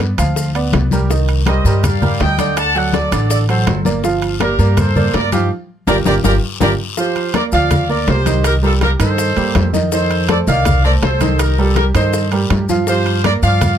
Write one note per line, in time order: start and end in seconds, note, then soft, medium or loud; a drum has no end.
0.00 0.12 G2 medium
0.00 0.12 B3 medium
0.00 0.12 B4 medium
0.00 0.12 D5 medium
0.00 high bongo medium
0.00 high timbale medium
0.00 low timbale medium
0.00 maracas soft
0.17 0.69 D2 medium
0.17 0.48 F3 medium
0.17 0.48 F4 medium
0.17 0.49 F5 medium
0.17 high conga soft
0.17 high timbale medium
0.17 short guiro medium
0.17 maracas medium
0.36 high bongo medium
0.36 high conga soft
0.36 long guiro medium
0.36 maracas medium
0.55 0.85 B3 medium
0.55 0.85 B4 medium
0.55 0.86 D5 medium
0.55 high bongo soft
0.55 high conga soft
0.55 high timbale medium
0.55 maracas soft
0.73 1.59 C2 medium
0.73 high bongo medium
0.73 low bongo medium
0.73 high conga medium
0.73 high timbale medium
0.73 low timbale medium
0.73 short guiro medium
0.73 maracas soft
0.91 1.07 G3 medium
0.91 1.07 G4 medium
0.91 1.07 A#4 medium
0.91 high bongo soft
0.91 high conga medium
0.91 short guiro medium
0.91 maracas medium
1.10 1.40 D#3 medium
1.10 1.40 D#4 medium
1.10 1.41 D#5 medium
1.10 high bongo medium
1.10 high conga soft
1.10 long guiro medium
1.10 maracas medium
1.28 high conga soft
1.28 high timbale medium
1.28 maracas soft
1.46 1.62 G3 medium
1.46 1.62 G4 medium
1.46 1.62 A#4 medium
1.46 1.82 C5 medium
1.46 1.82 D#5 medium
1.46 high bongo medium
1.46 high conga medium
1.46 high timbale loud
1.46 low timbale medium
1.46 short guiro medium
1.46 maracas soft
1.65 2.16 G2 medium
1.65 1.95 G3 medium
1.65 1.96 G4 medium
1.65 1.96 A#4 medium
1.65 high conga soft
1.65 short guiro medium
1.65 maracas medium
1.83 2.21 D5 medium
1.83 2.21 F5 medium
1.83 high bongo medium
1.83 high conga soft
1.83 low conga medium
1.83 high timbale medium
1.83 long guiro medium
1.83 maracas medium
2.02 2.32 G3 medium
2.02 2.32 G4 medium
2.02 2.32 A#4 medium
2.02 high conga soft
2.02 low conga medium
2.02 maracas soft
2.20 3.06 D2 medium
2.20 2.55 D#5 medium
2.20 2.55 G5 loud
2.20 high bongo medium
2.20 low bongo medium
2.20 high timbale medium
2.20 low timbale medium
2.20 short guiro medium
2.20 maracas soft
2.38 2.69 D3 medium
2.38 2.69 D4 medium
2.38 2.69 D5 medium
2.38 high conga medium
2.38 high timbale medium
2.38 short guiro medium
2.38 maracas medium
2.57 2.75 F#5 medium
2.57 2.76 A5 loud
2.57 high bongo medium
2.57 high conga soft
2.57 high timbale medium
2.57 long guiro medium
2.57 maracas medium
2.75 3.05 F#3 medium
2.75 3.06 F#4 medium
2.75 3.06 A4 medium
2.75 2.93 D5 medium
2.75 2.94 F#5 loud
2.75 high bongo soft
2.75 high conga soft
2.75 maracas soft
2.93 3.28 A4 medium
2.93 3.28 D5 loud
2.93 high bongo medium
2.93 high conga loud
2.93 high timbale medium
2.93 low timbale medium
2.93 short guiro medium
2.93 maracas soft
3.12 3.63 A1 medium
3.12 3.42 D3 medium
3.12 3.42 D4 medium
3.12 3.43 D5 medium
3.12 high conga soft
3.12 high timbale loud
3.12 short guiro medium
3.12 maracas medium
3.30 3.40 A4 medium
3.30 3.39 D5 medium
3.30 high bongo medium
3.30 high conga soft
3.30 long guiro medium
3.30 maracas medium
3.49 3.79 F#3 medium
3.49 3.79 F#4 medium
3.49 3.79 A4 medium
3.49 3.84 A4 medium
3.49 3.83 C5 medium
3.49 high bongo soft
3.49 high conga soft
3.49 high timbale medium
3.49 maracas soft
3.67 4.53 G1 medium
3.67 high bongo medium
3.67 low bongo medium
3.67 high conga medium
3.67 high timbale loud
3.67 low timbale medium
3.67 short guiro medium
3.67 maracas soft
3.85 4.00 A#3 medium
3.85 4.00 A#4 medium
3.85 4.01 D5 medium
3.85 high bongo soft
3.85 high conga medium
3.85 short guiro medium
3.85 maracas medium
4.04 4.34 F3 medium
4.04 4.34 F4 medium
4.04 4.34 F5 medium
4.04 high bongo medium
4.04 long guiro medium
4.04 maracas medium
4.22 high conga soft
4.22 high timbale medium
4.22 maracas soft
4.40 4.56 A#3 medium
4.40 4.75 G4 medium
4.40 4.56 A#4 medium
4.40 4.75 A#4 medium
4.40 4.56 D5 medium
4.40 high bongo medium
4.40 high conga loud
4.40 high timbale loud
4.40 low timbale medium
4.40 short guiro medium
4.40 maracas soft
4.59 5.10 G2 medium
4.59 4.89 A#3 medium
4.59 4.89 A#4 medium
4.59 4.89 D5 medium
4.59 high conga soft
4.59 short guiro medium
4.59 maracas medium
4.77 5.15 A4 medium
4.77 5.15 C5 loud
4.77 high bongo medium
4.77 high conga soft
4.77 low conga medium
4.77 high timbale medium
4.77 long guiro medium
4.77 maracas medium
4.96 5.26 A#3 medium
4.96 5.26 A#4 medium
4.96 5.26 D5 medium
4.96 high conga soft
4.96 low conga medium
4.96 maracas soft
5.13 5.48 G2 medium
5.13 5.32 A#4 medium
5.13 5.32 D5 loud
5.13 high bongo medium
5.13 low bongo medium
5.13 high conga soft
5.13 high timbale medium
5.13 low timbale medium
5.13 short guiro medium
5.13 maracas soft
5.32 5.48 F3 medium
5.32 5.50 D#4 medium
5.32 5.48 F4 medium
5.32 5.50 G4 medium
5.32 5.48 F5 medium
5.32 high conga medium
5.32 high timbale medium
5.32 short guiro medium
5.32 maracas medium
5.87 6.01 G1 medium
5.87 5.99 F4 loud
5.87 5.99 G4 loud
5.87 5.97 G4 loud
5.87 5.99 A#4 loud
5.87 5.97 A#4 loud
5.87 5.97 D5 loud
5.87 low bongo loud
5.87 high conga loud
5.87 high timbale loud
5.87 long guiro medium
5.87 maracas medium
6.05 6.19 G1 loud
6.05 6.18 F4 loud
6.05 6.18 G4 loud
6.05 6.15 G4 medium
6.05 6.18 A#4 loud
6.05 6.15 A#4 medium
6.05 6.15 D5 medium
6.05 low bongo medium
6.05 high conga loud
6.05 high timbale loud
6.05 long guiro loud
6.05 maracas loud
6.24 6.38 G1 medium
6.24 6.36 F4 loud
6.24 6.36 G4 medium
6.24 6.34 G4 medium
6.24 6.36 A#4 loud
6.24 6.34 A#4 medium
6.24 6.34 D5 medium
6.24 low bongo loud
6.24 high conga loud
6.24 high timbale loud
6.24 long guiro loud
6.24 maracas medium
6.60 6.74 G1 medium
6.60 6.73 F4 medium
6.60 6.73 G4 loud
6.60 6.70 G4 loud
6.60 6.73 A#4 loud
6.60 6.70 A#4 loud
6.60 6.71 D5 loud
6.60 low bongo medium
6.60 high conga loud
6.60 high timbale loud
6.60 maracas medium
6.97 7.27 F3 medium
6.97 7.28 F4 medium
6.97 7.33 G4 medium
6.97 7.33 C5 loud
6.97 7.28 F5 medium
6.97 high bongo medium
6.97 high conga soft
6.97 maracas medium
7.16 high conga soft
7.16 high timbale medium
7.16 maracas soft
7.34 7.49 A#3 medium
7.34 7.49 A#4 medium
7.34 7.44 A#4 medium
7.34 7.50 D5 medium
7.34 7.44 D5 loud
7.34 high bongo medium
7.34 high conga loud
7.34 high timbale loud
7.34 low timbale medium
7.34 short guiro medium
7.34 maracas soft
7.52 8.04 D2 medium
7.52 7.83 F3 medium
7.52 7.83 F4 medium
7.52 7.88 D5 medium
7.52 7.83 F5 medium
7.52 7.88 F5 loud
7.52 high conga soft
7.52 short guiro medium
7.52 maracas medium
7.71 high bongo medium
7.71 high conga soft
7.71 low conga medium
7.71 high timbale medium
7.71 long guiro medium
7.71 maracas medium
7.89 8.19 A#3 medium
7.89 8.20 A#4 medium
7.89 8.07 A#4 medium
7.89 8.20 D5 medium
7.89 8.07 D5 loud
7.89 high conga soft
7.89 maracas soft
8.07 8.94 C2 medium
8.07 8.43 G4 medium
8.07 8.43 C5 loud
8.07 high bongo medium
8.07 low bongo medium
8.07 high conga soft
8.07 high timbale medium
8.07 low timbale medium
8.07 short guiro medium
8.07 maracas soft
8.26 8.56 D#3 medium
8.26 8.57 D#4 medium
8.26 8.57 D#5 medium
8.26 high conga medium
8.26 high timbale medium
8.26 short guiro medium
8.26 maracas medium
8.44 8.54 G4 medium
8.44 8.54 A#4 loud
8.44 high bongo medium
8.44 high conga soft
8.44 high timbale loud
8.44 long guiro medium
8.44 maracas medium
8.62 8.93 G3 medium
8.62 8.72 F4 medium
8.62 8.93 G4 medium
8.62 8.73 A4 medium
8.62 8.93 A#4 medium
8.62 high bongo soft
8.62 high conga soft
8.62 maracas soft
8.81 8.91 G4 medium
8.81 8.91 A#4 medium
8.81 high bongo medium
8.81 high conga loud
8.81 high timbale medium
8.81 low timbale medium
8.81 short guiro medium
8.81 maracas soft
8.99 9.34 G2 medium
8.99 9.30 D#3 medium
8.99 9.30 D#4 medium
8.99 9.70 A4 medium
8.99 9.70 C5 loud
8.99 9.30 D#5 medium
8.99 high conga soft
8.99 high timbale medium
8.99 short guiro medium
8.99 maracas medium
9.18 high bongo medium
9.18 high conga soft
9.18 long guiro medium
9.18 maracas medium
9.36 9.54 G2 medium
9.36 9.67 G3 medium
9.36 9.67 A#3 medium
9.36 9.67 G4 medium
9.36 high bongo soft
9.36 high conga soft
9.36 high timbale medium
9.36 maracas soft
9.55 10.42 F2 medium
9.55 high bongo medium
9.55 low bongo medium
9.55 high conga medium
9.55 high timbale medium
9.55 low timbale medium
9.55 short guiro medium
9.55 maracas soft
9.73 9.89 D#3 medium
9.73 9.89 D#4 medium
9.73 9.89 D#5 medium
9.73 high bongo soft
9.73 high conga medium
9.73 short guiro medium
9.73 maracas medium
9.92 10.22 D#3 medium
9.92 10.23 D#4 medium
9.92 10.27 A4 medium
9.92 10.27 C5 loud
9.92 10.23 D#5 medium
9.92 high bongo medium
9.92 high conga soft
9.92 long guiro medium
9.92 maracas medium
10.10 high conga soft
10.10 high timbale medium
10.10 maracas soft
10.29 10.44 A3 medium
10.29 10.44 A4 medium
10.29 10.38 A4 medium
10.29 10.44 C5 medium
10.29 10.39 D5 loud
10.29 high bongo medium
10.29 high conga loud
10.29 high timbale loud
10.29 low timbale medium
10.29 short guiro medium
10.29 maracas soft
10.47 10.99 C2 loud
10.47 10.78 D#3 medium
10.47 10.78 D#4 medium
10.47 10.82 D5 medium
10.47 10.78 F5 medium
10.47 10.82 F5 loud
10.47 high conga soft
10.47 short guiro medium
10.47 maracas medium
10.65 high bongo medium
10.65 high conga soft
10.65 low conga medium
10.65 high timbale medium
10.65 long guiro medium
10.65 maracas medium
10.84 11.15 A3 medium
10.84 11.15 A4 medium
10.84 10.93 A#4 medium
10.84 11.15 C5 medium
10.84 10.93 D5 loud
10.84 high conga soft
10.84 maracas soft
11.02 11.89 C2 medium
11.02 11.37 A4 medium
11.02 11.38 C5 medium
11.02 high bongo medium
11.02 low bongo medium
11.02 high conga soft
11.02 high timbale medium
11.02 low timbale medium
11.02 short guiro medium
11.02 maracas soft
11.21 11.52 D#3 medium
11.21 11.52 D#4 medium
11.21 11.52 D#5 medium
11.21 high conga medium
11.21 high timbale medium
11.21 short guiro medium
11.21 maracas medium
11.39 11.58 G4 medium
11.39 11.59 A#4 medium
11.39 high bongo medium
11.39 high conga soft
11.39 high timbale medium
11.39 long guiro medium
11.39 maracas medium
11.58 11.88 G3 medium
11.58 11.77 F4 medium
11.58 11.89 G4 medium
11.58 11.77 A4 medium
11.58 11.89 A#4 medium
11.58 high bongo soft
11.58 high conga soft
11.58 maracas soft
11.76 11.85 G4 medium
11.76 11.85 A#4 medium
11.76 high bongo medium
11.76 high conga loud
11.76 high timbale medium
11.76 low timbale medium
11.76 short guiro medium
11.76 maracas soft
11.94 12.46 G2 medium
11.94 12.25 D#3 medium
11.94 12.25 D#4 medium
11.94 12.39 A4 medium
11.94 12.39 C5 medium
11.94 12.26 D#5 medium
11.94 high conga soft
11.94 high timbale medium
11.94 short guiro medium
11.94 maracas medium
12.13 high bongo medium
12.13 high conga soft
12.13 long guiro medium
12.13 maracas medium
12.32 12.62 G3 medium
12.32 12.63 G4 medium
12.32 12.63 A#4 medium
12.32 high bongo soft
12.32 high conga soft
12.32 high timbale medium
12.32 maracas soft
12.50 13.37 G2 medium
12.50 high bongo medium
12.50 low bongo medium
12.50 high conga medium
12.50 high timbale loud
12.50 low timbale medium
12.50 short guiro medium
12.50 maracas soft
12.69 12.84 F3 medium
12.69 12.84 F4 medium
12.69 12.85 F5 medium
12.69 high bongo soft
12.69 high conga medium
12.69 short guiro medium
12.69 maracas medium
12.87 13.18 F3 medium
12.87 13.18 F4 medium
12.87 13.22 G4 medium
12.87 13.22 C5 loud
12.87 13.18 F5 medium
12.87 high bongo medium
12.87 high conga soft
12.87 long guiro medium
12.87 maracas medium
13.06 high conga soft
13.06 high timbale medium
13.06 maracas soft
13.24 13.40 A#3 medium
13.24 13.40 A#4 medium
13.24 13.33 A#4 medium
13.24 13.40 D5 medium
13.24 13.33 D5 loud
13.24 high bongo medium
13.24 high conga medium
13.24 high timbale medium
13.24 low timbale medium
13.24 short guiro medium
13.24 maracas soft
13.43 13.78 G2 medium
13.43 13.73 F3 medium
13.43 13.73 F4 medium
13.43 13.78 D5 medium
13.43 13.77 F5 loud
13.43 13.74 F5 medium
13.43 high conga soft
13.43 short guiro medium
13.43 maracas medium
13.61 high bongo medium
13.61 high conga soft
13.61 low conga medium
13.61 high timbale medium
13.61 long guiro medium
13.61 maracas medium